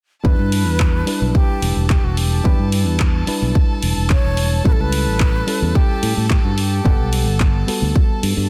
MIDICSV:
0, 0, Header, 1, 7, 480
1, 0, Start_track
1, 0, Tempo, 550459
1, 215, Time_signature, 4, 2, 24, 8
1, 7405, End_track
2, 0, Start_track
2, 0, Title_t, "Violin section"
2, 0, Program_c, 0, 48
2, 209, Note_on_c, 0, 81, 74
2, 210, Note_on_c, 0, 69, 74
2, 7405, Note_off_c, 0, 69, 0
2, 7405, Note_off_c, 0, 81, 0
2, 7405, End_track
3, 0, Start_track
3, 0, Title_t, "Flute"
3, 0, Program_c, 1, 73
3, 214, Note_on_c, 1, 71, 109
3, 1140, Note_off_c, 1, 71, 0
3, 1177, Note_on_c, 1, 67, 90
3, 1623, Note_off_c, 1, 67, 0
3, 1657, Note_on_c, 1, 67, 80
3, 1779, Note_on_c, 1, 66, 75
3, 1792, Note_off_c, 1, 67, 0
3, 1896, Note_on_c, 1, 67, 81
3, 1909, Note_off_c, 1, 66, 0
3, 2616, Note_off_c, 1, 67, 0
3, 3585, Note_on_c, 1, 73, 104
3, 4027, Note_off_c, 1, 73, 0
3, 4064, Note_on_c, 1, 71, 100
3, 4118, Note_on_c, 1, 69, 85
3, 4131, Note_off_c, 1, 71, 0
3, 4192, Note_on_c, 1, 71, 112
3, 4205, Note_off_c, 1, 69, 0
3, 5016, Note_on_c, 1, 67, 95
3, 5029, Note_off_c, 1, 71, 0
3, 5484, Note_off_c, 1, 67, 0
3, 5489, Note_on_c, 1, 67, 83
3, 5618, Note_on_c, 1, 66, 78
3, 5631, Note_off_c, 1, 67, 0
3, 5729, Note_off_c, 1, 66, 0
3, 5734, Note_on_c, 1, 67, 84
3, 6420, Note_off_c, 1, 67, 0
3, 7405, End_track
4, 0, Start_track
4, 0, Title_t, "Reed electric piano"
4, 0, Program_c, 2, 4
4, 205, Note_on_c, 2, 55, 85
4, 211, Note_on_c, 2, 62, 74
4, 216, Note_on_c, 2, 64, 76
4, 222, Note_on_c, 2, 71, 95
4, 902, Note_off_c, 2, 55, 0
4, 905, Note_off_c, 2, 62, 0
4, 908, Note_off_c, 2, 64, 0
4, 911, Note_off_c, 2, 71, 0
4, 923, Note_on_c, 2, 55, 69
4, 930, Note_on_c, 2, 62, 62
4, 934, Note_on_c, 2, 64, 65
4, 941, Note_on_c, 2, 71, 75
4, 2102, Note_off_c, 2, 55, 0
4, 2105, Note_off_c, 2, 62, 0
4, 2107, Note_off_c, 2, 64, 0
4, 2110, Note_off_c, 2, 71, 0
4, 2125, Note_on_c, 2, 55, 86
4, 2130, Note_on_c, 2, 62, 79
4, 2138, Note_on_c, 2, 64, 79
4, 2143, Note_on_c, 2, 71, 97
4, 2823, Note_off_c, 2, 55, 0
4, 2825, Note_off_c, 2, 62, 0
4, 2829, Note_off_c, 2, 64, 0
4, 2832, Note_off_c, 2, 71, 0
4, 2849, Note_on_c, 2, 55, 68
4, 2854, Note_on_c, 2, 62, 64
4, 2860, Note_on_c, 2, 64, 66
4, 2865, Note_on_c, 2, 71, 76
4, 4025, Note_off_c, 2, 55, 0
4, 4027, Note_off_c, 2, 62, 0
4, 4030, Note_off_c, 2, 64, 0
4, 4032, Note_off_c, 2, 71, 0
4, 4048, Note_on_c, 2, 55, 89
4, 4053, Note_on_c, 2, 61, 79
4, 4061, Note_on_c, 2, 64, 79
4, 4068, Note_on_c, 2, 69, 96
4, 4744, Note_off_c, 2, 55, 0
4, 4747, Note_off_c, 2, 61, 0
4, 4750, Note_off_c, 2, 64, 0
4, 4754, Note_off_c, 2, 69, 0
4, 4765, Note_on_c, 2, 55, 70
4, 4770, Note_on_c, 2, 61, 66
4, 4777, Note_on_c, 2, 64, 66
4, 4782, Note_on_c, 2, 69, 77
4, 5716, Note_off_c, 2, 55, 0
4, 5719, Note_off_c, 2, 61, 0
4, 5722, Note_off_c, 2, 64, 0
4, 5725, Note_off_c, 2, 69, 0
4, 5966, Note_on_c, 2, 55, 90
4, 5970, Note_on_c, 2, 59, 79
4, 5977, Note_on_c, 2, 78, 83
4, 5981, Note_on_c, 2, 69, 95
4, 6663, Note_off_c, 2, 55, 0
4, 6665, Note_off_c, 2, 59, 0
4, 6669, Note_off_c, 2, 78, 0
4, 6671, Note_off_c, 2, 69, 0
4, 6688, Note_on_c, 2, 55, 71
4, 6692, Note_on_c, 2, 59, 64
4, 6698, Note_on_c, 2, 66, 64
4, 6705, Note_on_c, 2, 69, 76
4, 7405, Note_off_c, 2, 55, 0
4, 7405, Note_off_c, 2, 59, 0
4, 7405, Note_off_c, 2, 66, 0
4, 7405, Note_off_c, 2, 69, 0
4, 7405, End_track
5, 0, Start_track
5, 0, Title_t, "Fingered electric bass"
5, 0, Program_c, 3, 33
5, 216, Note_on_c, 3, 40, 84
5, 306, Note_off_c, 3, 40, 0
5, 341, Note_on_c, 3, 43, 86
5, 581, Note_off_c, 3, 43, 0
5, 581, Note_on_c, 3, 40, 78
5, 885, Note_off_c, 3, 40, 0
5, 1058, Note_on_c, 3, 35, 80
5, 1142, Note_off_c, 3, 35, 0
5, 1412, Note_on_c, 3, 28, 80
5, 1504, Note_off_c, 3, 28, 0
5, 1538, Note_on_c, 3, 28, 80
5, 1710, Note_off_c, 3, 28, 0
5, 1778, Note_on_c, 3, 28, 78
5, 2083, Note_off_c, 3, 28, 0
5, 2138, Note_on_c, 3, 40, 90
5, 2227, Note_off_c, 3, 40, 0
5, 2260, Note_on_c, 3, 43, 87
5, 2500, Note_off_c, 3, 43, 0
5, 2500, Note_on_c, 3, 40, 82
5, 2805, Note_off_c, 3, 40, 0
5, 2981, Note_on_c, 3, 35, 82
5, 3064, Note_off_c, 3, 35, 0
5, 3338, Note_on_c, 3, 28, 85
5, 3427, Note_off_c, 3, 28, 0
5, 3464, Note_on_c, 3, 28, 80
5, 3633, Note_off_c, 3, 28, 0
5, 3702, Note_on_c, 3, 28, 78
5, 4006, Note_off_c, 3, 28, 0
5, 4058, Note_on_c, 3, 33, 94
5, 4147, Note_off_c, 3, 33, 0
5, 4179, Note_on_c, 3, 37, 92
5, 4418, Note_off_c, 3, 37, 0
5, 4418, Note_on_c, 3, 33, 82
5, 4723, Note_off_c, 3, 33, 0
5, 4899, Note_on_c, 3, 40, 81
5, 4983, Note_off_c, 3, 40, 0
5, 5255, Note_on_c, 3, 45, 85
5, 5345, Note_off_c, 3, 45, 0
5, 5380, Note_on_c, 3, 45, 81
5, 5551, Note_off_c, 3, 45, 0
5, 5620, Note_on_c, 3, 43, 75
5, 5924, Note_off_c, 3, 43, 0
5, 5978, Note_on_c, 3, 31, 91
5, 6066, Note_off_c, 3, 31, 0
5, 6101, Note_on_c, 3, 35, 89
5, 6343, Note_off_c, 3, 35, 0
5, 6343, Note_on_c, 3, 31, 80
5, 6646, Note_off_c, 3, 31, 0
5, 6816, Note_on_c, 3, 38, 81
5, 6902, Note_off_c, 3, 38, 0
5, 7176, Note_on_c, 3, 43, 85
5, 7266, Note_off_c, 3, 43, 0
5, 7298, Note_on_c, 3, 43, 81
5, 7405, Note_off_c, 3, 43, 0
5, 7405, End_track
6, 0, Start_track
6, 0, Title_t, "Muted fingered electric bass strokes"
6, 2858, Note_on_c, 9, 29, 37
6, 2945, Note_off_c, 9, 29, 0
6, 6697, Note_on_c, 9, 29, 38
6, 6784, Note_off_c, 9, 29, 0
6, 7405, End_track
7, 0, Start_track
7, 0, Title_t, "Drums"
7, 216, Note_on_c, 9, 36, 105
7, 303, Note_off_c, 9, 36, 0
7, 456, Note_on_c, 9, 46, 97
7, 543, Note_off_c, 9, 46, 0
7, 696, Note_on_c, 9, 36, 91
7, 698, Note_on_c, 9, 39, 108
7, 783, Note_off_c, 9, 36, 0
7, 785, Note_off_c, 9, 39, 0
7, 935, Note_on_c, 9, 46, 80
7, 1022, Note_off_c, 9, 46, 0
7, 1176, Note_on_c, 9, 36, 105
7, 1264, Note_off_c, 9, 36, 0
7, 1416, Note_on_c, 9, 46, 94
7, 1504, Note_off_c, 9, 46, 0
7, 1657, Note_on_c, 9, 36, 100
7, 1657, Note_on_c, 9, 39, 105
7, 1744, Note_off_c, 9, 36, 0
7, 1745, Note_off_c, 9, 39, 0
7, 1895, Note_on_c, 9, 46, 87
7, 1982, Note_off_c, 9, 46, 0
7, 2137, Note_on_c, 9, 36, 112
7, 2224, Note_off_c, 9, 36, 0
7, 2375, Note_on_c, 9, 46, 99
7, 2462, Note_off_c, 9, 46, 0
7, 2614, Note_on_c, 9, 39, 111
7, 2618, Note_on_c, 9, 36, 98
7, 2701, Note_off_c, 9, 39, 0
7, 2705, Note_off_c, 9, 36, 0
7, 2854, Note_on_c, 9, 46, 83
7, 2942, Note_off_c, 9, 46, 0
7, 3098, Note_on_c, 9, 36, 115
7, 3185, Note_off_c, 9, 36, 0
7, 3335, Note_on_c, 9, 46, 99
7, 3423, Note_off_c, 9, 46, 0
7, 3575, Note_on_c, 9, 39, 108
7, 3577, Note_on_c, 9, 36, 104
7, 3662, Note_off_c, 9, 39, 0
7, 3665, Note_off_c, 9, 36, 0
7, 3813, Note_on_c, 9, 46, 86
7, 3900, Note_off_c, 9, 46, 0
7, 4058, Note_on_c, 9, 36, 113
7, 4145, Note_off_c, 9, 36, 0
7, 4294, Note_on_c, 9, 46, 110
7, 4382, Note_off_c, 9, 46, 0
7, 4537, Note_on_c, 9, 39, 110
7, 4538, Note_on_c, 9, 36, 99
7, 4624, Note_off_c, 9, 39, 0
7, 4625, Note_off_c, 9, 36, 0
7, 4776, Note_on_c, 9, 46, 90
7, 4863, Note_off_c, 9, 46, 0
7, 5017, Note_on_c, 9, 36, 114
7, 5104, Note_off_c, 9, 36, 0
7, 5257, Note_on_c, 9, 46, 103
7, 5344, Note_off_c, 9, 46, 0
7, 5497, Note_on_c, 9, 36, 109
7, 5498, Note_on_c, 9, 39, 111
7, 5584, Note_off_c, 9, 36, 0
7, 5585, Note_off_c, 9, 39, 0
7, 5735, Note_on_c, 9, 46, 91
7, 5822, Note_off_c, 9, 46, 0
7, 5977, Note_on_c, 9, 36, 111
7, 6064, Note_off_c, 9, 36, 0
7, 6214, Note_on_c, 9, 46, 104
7, 6302, Note_off_c, 9, 46, 0
7, 6456, Note_on_c, 9, 39, 106
7, 6457, Note_on_c, 9, 36, 100
7, 6543, Note_off_c, 9, 39, 0
7, 6544, Note_off_c, 9, 36, 0
7, 6699, Note_on_c, 9, 46, 85
7, 6786, Note_off_c, 9, 46, 0
7, 6938, Note_on_c, 9, 36, 114
7, 7025, Note_off_c, 9, 36, 0
7, 7178, Note_on_c, 9, 46, 101
7, 7266, Note_off_c, 9, 46, 0
7, 7405, End_track
0, 0, End_of_file